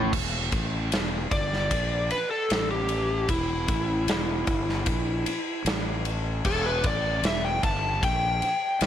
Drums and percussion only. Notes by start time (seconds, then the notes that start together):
0.13 kick, crash
0.52 kick, ride
0.92 snare, ride
1.31 kick, ride
1.53 snare
1.71 kick, ride
2.11 ride
2.50 snare, ride
2.89 ride
3.29 kick, ride
3.68 kick, ride
4.08 snare, ride
4.47 kick, ride
4.69 snare
4.86 kick, ride
5.26 ride
5.66 snare, ride
6.05 ride
6.45 kick, crash
6.84 kick, ride
7.24 snare, ride
7.63 kick, ride
8.03 kick, ride
8.42 ride
8.81 snare, ride